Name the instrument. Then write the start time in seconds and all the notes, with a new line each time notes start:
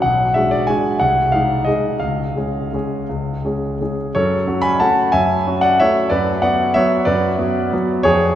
grand piano
0.02 B1 F#5
0.34 G#3 D4 F#4 E5
0.51 D5
0.67 G#3 D4 F#4 G#5
0.99 C2 F#5
1.32 G#3 D#4 G#4 F5
1.65 G#3 D#4 G#4 D#5
2.00 C#2 F5
2.36 G#3 C#4 G#4
2.73 G#3 C#4 G#4
3.09 C#2
3.45 G#3 C#4 G#4
3.81 G#3 C#4 G#4
4.15 F#2 A4 C#5
4.47 C#4 F#4
4.62 G#5 B5
4.80 A3 C#4 F#4 F#5 A5
5.12 F#2 E5 G#5
5.47 C#4 F#4
5.61 D5 F#5
5.80 A3 C#4 F#4 C#5 E5
6.10 F#2 B4 D5
6.42 B3 F#4 D5 F#5
6.74 F#3 B3 F#4 C#5 E5
7.05 F#2 B4 D5
7.39 B3 F#4
7.73 F#3 B3 F#4
8.03 F2 G#4 C#5